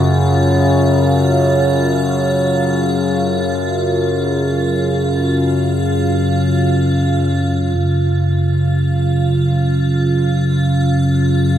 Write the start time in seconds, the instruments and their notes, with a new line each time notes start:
Already playing: synth drone F#2 C#3, ambient pad F4 F5
7.74 synth drone F#2 C#3, ambient pad F5
7.78 ambient pad F4